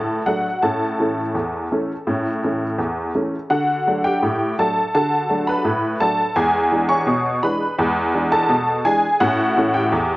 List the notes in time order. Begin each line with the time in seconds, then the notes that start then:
Already playing: A2 A4 A5
0.26 F#3 A3 D4 F#4 F#5
0.62 A2 C#4 A4 A5
1.00 E3 A3 C#4
1.35 E2
1.72 E3 A3 C#4
2.07 A2 C#4
2.44 E3 A3 C#4
2.78 E2
3.15 E3 A3 C#4
3.50 D3 F#4 F#5
3.87 F#3 A3 D4
4.04 G4 G5
4.23 A2
4.59 F#3 A3 D4 A4 A5
4.95 D3 F#4 A4 A5
5.29 F#3 A3 D4
5.47 B4 B5
5.65 A2
6.00 F#3 A3 D4 A4 A5
6.36 E2 G#3 G#4 G#5
6.72 E3 G#3 D4
6.89 C#5 C#6
7.07 B2
7.43 E3 G#3 D4 B4 B5
7.79 E2 G#3
8.14 E3 G#3 D4
8.32 A4 A5
8.49 B2
8.85 E3 G#3 D4 G#4 G#5
9.20 A2 C#4 F#4 F#5
9.57 E3 A3 C#4
9.74 G4 G5
9.92 E2